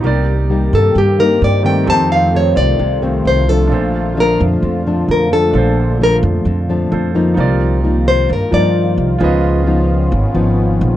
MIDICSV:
0, 0, Header, 1, 6, 480
1, 0, Start_track
1, 0, Key_signature, -2, "major"
1, 0, Tempo, 458365
1, 35, Time_signature, 4, 2, 24, 8
1, 11485, End_track
2, 0, Start_track
2, 0, Title_t, "Nylon-string guitar"
2, 0, Program_c, 0, 24
2, 784, Note_on_c, 0, 69, 78
2, 1004, Note_off_c, 0, 69, 0
2, 1028, Note_on_c, 0, 67, 74
2, 1246, Note_off_c, 0, 67, 0
2, 1256, Note_on_c, 0, 70, 91
2, 1481, Note_off_c, 0, 70, 0
2, 1511, Note_on_c, 0, 74, 84
2, 1729, Note_off_c, 0, 74, 0
2, 1736, Note_on_c, 0, 79, 77
2, 1961, Note_off_c, 0, 79, 0
2, 1988, Note_on_c, 0, 81, 104
2, 2207, Note_off_c, 0, 81, 0
2, 2219, Note_on_c, 0, 77, 85
2, 2443, Note_off_c, 0, 77, 0
2, 2476, Note_on_c, 0, 73, 82
2, 2688, Note_off_c, 0, 73, 0
2, 2692, Note_on_c, 0, 74, 104
2, 3134, Note_off_c, 0, 74, 0
2, 3429, Note_on_c, 0, 72, 83
2, 3656, Note_off_c, 0, 72, 0
2, 3656, Note_on_c, 0, 69, 86
2, 4370, Note_off_c, 0, 69, 0
2, 4401, Note_on_c, 0, 70, 89
2, 4616, Note_off_c, 0, 70, 0
2, 5354, Note_on_c, 0, 70, 75
2, 5573, Note_off_c, 0, 70, 0
2, 5582, Note_on_c, 0, 69, 82
2, 6251, Note_off_c, 0, 69, 0
2, 6320, Note_on_c, 0, 70, 100
2, 6453, Note_off_c, 0, 70, 0
2, 8460, Note_on_c, 0, 72, 90
2, 8685, Note_off_c, 0, 72, 0
2, 8721, Note_on_c, 0, 70, 69
2, 8935, Note_off_c, 0, 70, 0
2, 8942, Note_on_c, 0, 74, 93
2, 9609, Note_off_c, 0, 74, 0
2, 11485, End_track
3, 0, Start_track
3, 0, Title_t, "Grand piano"
3, 0, Program_c, 1, 0
3, 0, Control_c, 1, 64, 127
3, 5, Note_on_c, 1, 63, 54
3, 28, Note_on_c, 1, 67, 52
3, 50, Control_c, 1, 64, 0
3, 50, Note_on_c, 1, 70, 52
3, 68, Note_on_c, 1, 74, 69
3, 211, Control_c, 1, 64, 127
3, 1670, Note_off_c, 1, 63, 0
3, 1682, Note_off_c, 1, 67, 0
3, 1693, Note_off_c, 1, 70, 0
3, 1703, Note_off_c, 1, 74, 0
3, 1705, Note_on_c, 1, 63, 36
3, 1717, Note_on_c, 1, 67, 38
3, 1724, Note_on_c, 1, 70, 32
3, 1733, Note_on_c, 1, 74, 43
3, 1905, Note_off_c, 1, 63, 0
3, 1920, Note_on_c, 1, 63, 49
3, 1931, Note_off_c, 1, 67, 0
3, 1946, Note_on_c, 1, 67, 46
3, 1962, Note_off_c, 1, 70, 0
3, 1962, Note_on_c, 1, 69, 49
3, 1967, Note_off_c, 1, 74, 0
3, 1974, Control_c, 1, 64, 0
3, 1986, Note_on_c, 1, 72, 57
3, 2186, Control_c, 1, 64, 127
3, 3825, Note_off_c, 1, 63, 0
3, 3838, Note_off_c, 1, 67, 0
3, 3846, Note_off_c, 1, 69, 0
3, 3846, Note_on_c, 1, 62, 52
3, 3858, Note_off_c, 1, 72, 0
3, 3868, Note_on_c, 1, 65, 44
3, 3893, Note_on_c, 1, 69, 48
3, 3897, Control_c, 1, 64, 0
3, 3911, Note_on_c, 1, 72, 52
3, 4085, Control_c, 1, 64, 127
3, 5747, Note_off_c, 1, 62, 0
3, 5758, Note_off_c, 1, 65, 0
3, 5769, Note_on_c, 1, 62, 46
3, 5771, Note_off_c, 1, 69, 0
3, 5780, Note_off_c, 1, 72, 0
3, 5793, Note_on_c, 1, 65, 42
3, 5812, Note_on_c, 1, 69, 50
3, 5835, Note_on_c, 1, 72, 58
3, 7197, Note_off_c, 1, 62, 0
3, 7209, Note_off_c, 1, 65, 0
3, 7219, Note_off_c, 1, 69, 0
3, 7231, Note_off_c, 1, 72, 0
3, 7241, Note_on_c, 1, 65, 40
3, 7248, Note_on_c, 1, 69, 43
3, 7261, Note_on_c, 1, 72, 51
3, 7688, Note_on_c, 1, 63, 56
3, 7696, Note_off_c, 1, 65, 0
3, 7711, Note_on_c, 1, 65, 51
3, 7726, Note_off_c, 1, 69, 0
3, 7732, Note_off_c, 1, 72, 0
3, 7732, Note_on_c, 1, 70, 54
3, 7735, Control_c, 1, 64, 0
3, 7751, Note_on_c, 1, 74, 60
3, 7923, Control_c, 1, 64, 127
3, 8881, Note_off_c, 1, 63, 0
3, 8892, Note_off_c, 1, 65, 0
3, 8903, Note_off_c, 1, 70, 0
3, 8909, Note_on_c, 1, 63, 36
3, 8913, Note_off_c, 1, 74, 0
3, 8916, Note_on_c, 1, 65, 31
3, 8930, Note_on_c, 1, 70, 30
3, 8938, Note_on_c, 1, 74, 42
3, 9603, Note_off_c, 1, 65, 0
3, 9619, Note_on_c, 1, 65, 62
3, 9635, Note_off_c, 1, 63, 0
3, 9638, Note_on_c, 1, 68, 52
3, 9645, Note_off_c, 1, 70, 0
3, 9649, Note_off_c, 1, 74, 0
3, 9657, Control_c, 1, 64, 0
3, 9657, Note_on_c, 1, 71, 57
3, 9678, Note_on_c, 1, 75, 70
3, 9828, Control_c, 1, 64, 127
3, 11485, Note_off_c, 1, 65, 0
3, 11485, Note_off_c, 1, 68, 0
3, 11485, Note_off_c, 1, 71, 0
3, 11485, Note_off_c, 1, 75, 0
3, 11485, End_track
4, 0, Start_track
4, 0, Title_t, "Analog synth pad"
4, 0, Program_c, 2, 89
4, 42, Note_on_c, 2, 51, 82
4, 45, Note_on_c, 2, 58, 72
4, 46, Note_on_c, 2, 60, 74
4, 46, Note_on_c, 2, 67, 91
4, 1946, Note_off_c, 2, 58, 0
4, 1946, Note_off_c, 2, 67, 0
4, 1961, Note_on_c, 2, 57, 67
4, 1963, Note_on_c, 2, 65, 83
4, 3848, Note_off_c, 2, 51, 0
4, 3850, Note_off_c, 2, 60, 0
4, 3884, Note_on_c, 2, 50, 88
4, 3889, Note_on_c, 2, 46, 75
4, 7682, Note_off_c, 2, 57, 0
4, 7684, Note_off_c, 2, 65, 0
4, 7686, Note_off_c, 2, 50, 0
4, 7688, Note_off_c, 2, 46, 0
4, 7717, Note_on_c, 2, 65, 80
4, 7725, Note_on_c, 2, 58, 77
4, 7726, Note_on_c, 2, 51, 78
4, 9623, Note_off_c, 2, 58, 0
4, 9624, Note_off_c, 2, 51, 0
4, 9647, Note_on_c, 2, 61, 78
4, 9651, Note_on_c, 2, 51, 82
4, 9651, Note_on_c, 2, 59, 82
4, 11485, Note_off_c, 2, 51, 0
4, 11485, Note_off_c, 2, 59, 0
4, 11485, Note_off_c, 2, 61, 0
4, 11485, Note_off_c, 2, 65, 0
4, 11485, End_track
5, 0, Start_track
5, 0, Title_t, "Nylon-string guitar"
5, 0, Program_c, 3, 24
5, 39, Note_on_c, 3, 48, 62
5, 42, Note_on_c, 3, 55, 61
5, 49, Note_on_c, 3, 58, 54
5, 51, Note_on_c, 3, 63, 63
5, 350, Note_off_c, 3, 55, 0
5, 352, Note_off_c, 3, 58, 0
5, 352, Note_off_c, 3, 63, 0
5, 522, Note_on_c, 3, 55, 56
5, 529, Note_on_c, 3, 58, 55
5, 538, Note_on_c, 3, 63, 60
5, 976, Note_off_c, 3, 48, 0
5, 1005, Note_on_c, 3, 43, 48
5, 1203, Note_off_c, 3, 55, 0
5, 1206, Note_off_c, 3, 58, 0
5, 1210, Note_off_c, 3, 63, 0
5, 1246, Note_on_c, 3, 55, 59
5, 1249, Note_on_c, 3, 58, 63
5, 1254, Note_on_c, 3, 63, 69
5, 1685, Note_off_c, 3, 55, 0
5, 1685, Note_off_c, 3, 58, 0
5, 1689, Note_off_c, 3, 63, 0
5, 1719, Note_on_c, 3, 51, 67
5, 1725, Note_on_c, 3, 57, 66
5, 1728, Note_on_c, 3, 60, 65
5, 1940, Note_off_c, 3, 43, 0
5, 1966, Note_on_c, 3, 41, 61
5, 2403, Note_off_c, 3, 51, 0
5, 2405, Note_off_c, 3, 57, 0
5, 2405, Note_off_c, 3, 60, 0
5, 2454, Note_on_c, 3, 51, 61
5, 2456, Note_on_c, 3, 57, 62
5, 2461, Note_on_c, 3, 60, 65
5, 2901, Note_off_c, 3, 41, 0
5, 2925, Note_off_c, 3, 51, 0
5, 2926, Note_off_c, 3, 57, 0
5, 2928, Note_on_c, 3, 48, 49
5, 2929, Note_off_c, 3, 60, 0
5, 3161, Note_on_c, 3, 51, 63
5, 3165, Note_on_c, 3, 57, 64
5, 3172, Note_on_c, 3, 60, 81
5, 3604, Note_off_c, 3, 51, 0
5, 3606, Note_off_c, 3, 57, 0
5, 3610, Note_off_c, 3, 60, 0
5, 3651, Note_on_c, 3, 53, 64
5, 3658, Note_on_c, 3, 57, 62
5, 3662, Note_on_c, 3, 62, 74
5, 3862, Note_off_c, 3, 48, 0
5, 3894, Note_on_c, 3, 46, 61
5, 4330, Note_off_c, 3, 53, 0
5, 4332, Note_off_c, 3, 57, 0
5, 4335, Note_off_c, 3, 62, 0
5, 4367, Note_on_c, 3, 53, 68
5, 4372, Note_on_c, 3, 57, 67
5, 4375, Note_on_c, 3, 62, 65
5, 4825, Note_off_c, 3, 46, 0
5, 4848, Note_on_c, 3, 41, 53
5, 5048, Note_off_c, 3, 53, 0
5, 5049, Note_off_c, 3, 57, 0
5, 5051, Note_off_c, 3, 62, 0
5, 5096, Note_on_c, 3, 53, 68
5, 5104, Note_on_c, 3, 57, 57
5, 5105, Note_on_c, 3, 62, 71
5, 5532, Note_off_c, 3, 53, 0
5, 5534, Note_off_c, 3, 57, 0
5, 5536, Note_off_c, 3, 62, 0
5, 5570, Note_on_c, 3, 53, 64
5, 5575, Note_on_c, 3, 57, 65
5, 5582, Note_on_c, 3, 62, 65
5, 5782, Note_off_c, 3, 41, 0
5, 5809, Note_on_c, 3, 46, 59
5, 6249, Note_off_c, 3, 53, 0
5, 6252, Note_off_c, 3, 57, 0
5, 6253, Note_off_c, 3, 62, 0
5, 6296, Note_on_c, 3, 53, 68
5, 6300, Note_on_c, 3, 57, 63
5, 6302, Note_on_c, 3, 62, 68
5, 6743, Note_off_c, 3, 46, 0
5, 6767, Note_off_c, 3, 53, 0
5, 6768, Note_off_c, 3, 57, 0
5, 6770, Note_off_c, 3, 62, 0
5, 6771, Note_on_c, 3, 41, 58
5, 7009, Note_on_c, 3, 53, 62
5, 7018, Note_on_c, 3, 57, 63
5, 7021, Note_on_c, 3, 62, 72
5, 7449, Note_off_c, 3, 53, 0
5, 7451, Note_off_c, 3, 57, 0
5, 7454, Note_off_c, 3, 62, 0
5, 7485, Note_on_c, 3, 53, 74
5, 7490, Note_on_c, 3, 58, 67
5, 7496, Note_on_c, 3, 63, 82
5, 7703, Note_off_c, 3, 41, 0
5, 7728, Note_on_c, 3, 48, 61
5, 8165, Note_off_c, 3, 53, 0
5, 8168, Note_off_c, 3, 58, 0
5, 8171, Note_off_c, 3, 63, 0
5, 8207, Note_on_c, 3, 53, 54
5, 8211, Note_on_c, 3, 58, 52
5, 8215, Note_on_c, 3, 63, 66
5, 8661, Note_off_c, 3, 48, 0
5, 8680, Note_on_c, 3, 43, 51
5, 8682, Note_off_c, 3, 53, 0
5, 8684, Note_off_c, 3, 63, 0
5, 8685, Note_off_c, 3, 58, 0
5, 8919, Note_on_c, 3, 53, 68
5, 8922, Note_on_c, 3, 58, 67
5, 8930, Note_on_c, 3, 63, 73
5, 9601, Note_off_c, 3, 53, 0
5, 9604, Note_off_c, 3, 58, 0
5, 9606, Note_off_c, 3, 63, 0
5, 9616, Note_off_c, 3, 43, 0
5, 9634, Note_on_c, 3, 49, 60
5, 9640, Note_on_c, 3, 53, 60
5, 9644, Note_on_c, 3, 59, 53
5, 9648, Note_on_c, 3, 63, 69
5, 10082, Note_off_c, 3, 53, 0
5, 10082, Note_off_c, 3, 59, 0
5, 10086, Note_off_c, 3, 63, 0
5, 10123, Note_on_c, 3, 53, 62
5, 10128, Note_on_c, 3, 59, 61
5, 10131, Note_on_c, 3, 63, 66
5, 10572, Note_off_c, 3, 49, 0
5, 10595, Note_on_c, 3, 44, 48
5, 10598, Note_off_c, 3, 53, 0
5, 10599, Note_off_c, 3, 59, 0
5, 10602, Note_off_c, 3, 63, 0
5, 10833, Note_on_c, 3, 53, 67
5, 10838, Note_on_c, 3, 59, 69
5, 10840, Note_on_c, 3, 63, 77
5, 11485, Note_off_c, 3, 44, 0
5, 11485, Note_off_c, 3, 53, 0
5, 11485, Note_off_c, 3, 59, 0
5, 11485, Note_off_c, 3, 63, 0
5, 11485, End_track
6, 0, Start_track
6, 0, Title_t, "Upright bass"
6, 0, Program_c, 4, 32
6, 43, Note_on_c, 4, 36, 97
6, 719, Note_off_c, 4, 36, 0
6, 764, Note_on_c, 4, 43, 95
6, 984, Note_off_c, 4, 43, 0
6, 998, Note_on_c, 4, 43, 95
6, 1445, Note_off_c, 4, 43, 0
6, 1484, Note_on_c, 4, 43, 91
6, 1960, Note_on_c, 4, 41, 101
6, 1976, Note_off_c, 4, 43, 0
6, 2639, Note_off_c, 4, 41, 0
6, 2680, Note_on_c, 4, 36, 87
6, 2904, Note_off_c, 4, 36, 0
6, 2924, Note_on_c, 4, 36, 81
6, 3370, Note_off_c, 4, 36, 0
6, 3405, Note_on_c, 4, 36, 84
6, 3896, Note_off_c, 4, 36, 0
6, 3896, Note_on_c, 4, 34, 104
6, 4568, Note_off_c, 4, 34, 0
6, 4612, Note_on_c, 4, 41, 96
6, 4831, Note_off_c, 4, 41, 0
6, 4842, Note_on_c, 4, 41, 81
6, 5290, Note_off_c, 4, 41, 0
6, 5324, Note_on_c, 4, 41, 82
6, 5796, Note_on_c, 4, 34, 99
6, 5812, Note_off_c, 4, 41, 0
6, 6478, Note_off_c, 4, 34, 0
6, 6520, Note_on_c, 4, 41, 102
6, 6745, Note_off_c, 4, 41, 0
6, 6756, Note_on_c, 4, 41, 87
6, 7206, Note_off_c, 4, 41, 0
6, 7244, Note_on_c, 4, 41, 94
6, 7690, Note_off_c, 4, 41, 0
6, 7720, Note_on_c, 4, 36, 91
6, 8639, Note_off_c, 4, 36, 0
6, 8687, Note_on_c, 4, 43, 94
6, 8796, Note_off_c, 4, 43, 0
6, 8925, Note_on_c, 4, 43, 90
6, 9370, Note_off_c, 4, 43, 0
6, 9399, Note_on_c, 4, 36, 90
6, 9623, Note_off_c, 4, 36, 0
6, 9641, Note_on_c, 4, 37, 99
6, 10557, Note_off_c, 4, 37, 0
6, 10596, Note_on_c, 4, 32, 95
6, 10709, Note_off_c, 4, 32, 0
6, 10833, Note_on_c, 4, 32, 88
6, 11281, Note_off_c, 4, 32, 0
6, 11321, Note_on_c, 4, 34, 100
6, 11485, Note_off_c, 4, 34, 0
6, 11485, End_track
0, 0, End_of_file